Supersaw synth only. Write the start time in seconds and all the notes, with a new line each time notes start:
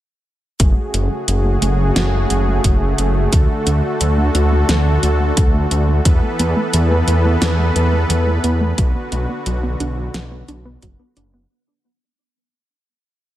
0.60 C#3 A3 F#4 G#4
3.33 D3 F#4 A4
6.05 E3 B3 A4 B4
8.78 D3 F#4